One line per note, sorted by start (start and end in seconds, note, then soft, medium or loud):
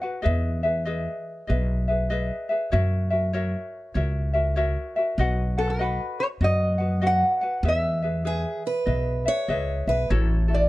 0.02 0.22 F#4 medium
0.02 0.22 B4 medium
0.02 0.24 F#5 medium
0.22 1.06 E2 loud
0.22 0.63 G#4 loud
0.22 0.63 B4 medium
0.22 0.63 D#5 medium
0.22 0.62 E5 loud
0.63 0.85 G#4 soft
0.63 0.85 B4 medium
0.63 0.86 E5 medium
0.85 1.47 G#4 medium
0.85 1.48 B4 medium
0.85 1.46 D#5 medium
0.85 1.49 E5 loud
1.47 2.30 B1 loud
1.47 1.87 G#4 medium
1.47 1.88 B4 medium
1.47 1.87 D#5 medium
1.47 1.87 E5 medium
1.88 2.09 G#4 soft
1.88 2.10 B4 medium
1.88 2.11 E5 medium
2.10 2.49 G#4 medium
2.10 2.49 B4 medium
2.10 2.49 D#5 medium
2.10 2.48 E5 loud
2.49 2.72 G#4 medium
2.49 2.72 B4 medium
2.49 2.71 E5 medium
2.72 3.53 F#2 loud
2.72 3.11 F#4 loud
2.72 3.10 A#4 medium
2.72 3.11 C#5 medium
2.72 3.09 E5 loud
3.10 3.33 F#4 medium
3.10 3.33 A#4 medium
3.10 3.34 E5 medium
3.33 3.95 F#4 medium
3.33 3.95 A#4 medium
3.33 3.93 C#5 medium
3.33 3.95 E5 medium
3.94 4.75 C#2 loud
3.94 4.34 F#4 medium
3.94 4.33 A#4 medium
3.94 4.34 C#5 medium
3.94 4.32 E5 medium
4.33 4.55 F#4 soft
4.33 4.56 A#4 medium
4.33 4.56 E5 medium
4.56 4.95 F#4 medium
4.56 4.96 A#4 medium
4.56 4.95 C#5 medium
4.56 4.95 E5 medium
4.96 5.18 F#4 medium
4.96 5.19 A#4 medium
4.96 5.19 E5 medium
5.18 5.98 B1 loud
5.18 5.58 F#4 medium
5.18 5.57 B4 loud
5.18 5.57 D#5 loud
5.18 5.56 F#5 loud
5.58 5.79 F#4 soft
5.58 5.70 A4 medium
5.58 5.80 B4 medium
5.58 5.80 F#5 medium
5.70 6.20 B4 medium
5.79 6.41 F#4 medium
5.79 6.41 B4 medium
5.79 6.41 D#5 medium
5.79 6.41 F#5 medium
6.20 6.26 C#5 medium
6.41 7.21 F#2 medium
6.41 6.79 F#4 medium
6.41 6.78 B4 medium
6.41 6.80 D#5 medium
6.41 7.06 D#5 loud
6.41 6.77 F#5 medium
6.78 7.01 F#4 soft
6.78 7.01 B4 medium
6.78 7.02 F#5 medium
7.01 7.41 F#4 medium
7.01 7.41 B4 medium
7.01 7.41 D#5 medium
7.01 7.40 F#5 medium
7.07 7.68 F#5 loud
7.41 7.64 F#4 soft
7.41 7.64 B4 medium
7.41 7.64 F#5 medium
7.63 8.44 E2 loud
7.63 8.03 G#4 medium
7.63 8.02 B4 medium
7.63 8.01 E5 medium
7.68 8.86 E5 loud
8.02 8.24 G#4 soft
8.02 8.24 B4 medium
8.02 8.25 E5 medium
8.25 8.85 G#4 medium
8.25 8.62 G#4 medium
8.25 8.86 B4 medium
8.25 8.87 E5 medium
8.67 9.28 B4 medium
8.86 9.27 B1 medium
8.86 9.26 G#4 medium
8.86 9.25 B4 medium
8.86 9.25 D#5 medium
8.86 9.24 E5 medium
9.26 9.48 G#4 soft
9.26 9.49 B4 soft
9.26 9.88 C#5 loud
9.26 9.49 E5 medium
9.48 9.83 C#2 medium
9.48 9.88 G#4 medium
9.48 9.87 B4 medium
9.48 9.87 D#5 medium
9.48 9.86 E5 loud
9.87 10.08 B1 medium
9.87 10.10 G#4 soft
9.87 10.10 B4 soft
9.87 10.10 B4 medium
9.87 10.10 E5 medium
10.10 10.69 A1 loud
10.10 10.48 E4 medium
10.10 10.49 F#4 medium
10.10 10.47 A4 loud
10.10 10.49 C#5 medium
10.48 10.69 E4 medium
10.48 10.69 F#4 soft
10.48 10.69 A4 medium
10.54 10.69 D5 medium